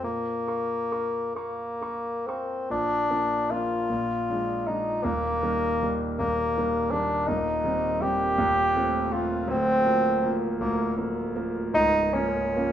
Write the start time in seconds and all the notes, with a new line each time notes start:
0.03 A#2 A#3
0.47 A#4 F5 C#6
0.92 A#4 F5 C#6
1.35 A#3 A#4 F5 C#6
1.81 A#4 F5 C#6
2.27 C4 A#4 F5 C#6
2.70 A#1 A#2 D4
3.10 F3 A#3 D4
3.50 F3 A#3 D4 F4
3.90 A#1 A#2
4.30 F3 G#3 D4
4.67 F3 G#3 D4 D#4
5.04 D#1 D#2 A#3
5.43 D#3 G3 A#3
5.83 D#3 G3 A#3
6.19 D#1 D#2 A#3
6.57 D#3 G3 A#3
6.91 D#3 G3 A#3 D4
7.27 D#1 D#2 D#4
7.64 D#3 G3 C4
8.01 D#3 G3 C4 G4
8.38 D#1 D#2
8.75 F3 A3 C4
9.11 F3 A3 C4 F4
9.48 D1 D2 C4
9.85 F3 A#3
10.22 F3 A#3
10.61 D1 D2 A#3
10.98 F3 A#3
11.36 F3 A#3
11.73 C#1 C#2 D#4
12.14 F3 A#3 C#4
12.56 F3 A#3 C#4